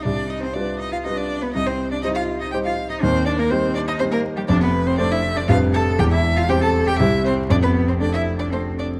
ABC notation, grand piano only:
X:1
M:3/4
L:1/8
Q:1/4=120
K:Cm
V:1 name="Grand piano"
[C,,C,]2 [G,F=B]2 [G,FB]2 | [C,,C,]2 [G,Ec]2 [G,Ec]2 | [E,,E,]2 [G,Ec]2 [G,Ec]2 | [K:C] [F,,,F,,]2 [A,Dc]2 [F,,,F,,G,DB]2 |
[E,,,E,,]2 [G,Cc]2 [C,,C,G,Cc]2 | [F,,,F,,]2 [A,DA]2 [A,DA]2 |]